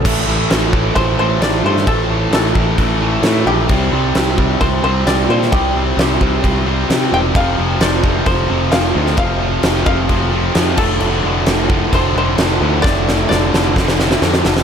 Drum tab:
CC |x---x---x---x---|x---x---x---x---|x---x---x---x---|x---x---x---x---|
SD |----o-------o--o|----o-------o---|----o-------o--o|----o-------o---|
BD |o-----o-o-------|o-----o-o-------|o-----o-o-------|o-----o-o-------|

CC |x---x---x---x---|x---x---x---x-x-|x---x---x---x---|----------------|
SD |----o-------o--o|----o-------o---|----o-------o---|o-o-o-o-oooooooo|
BD |o-----o-o-------|o-----o-o-----o-|------o-o-------|o-------o-------|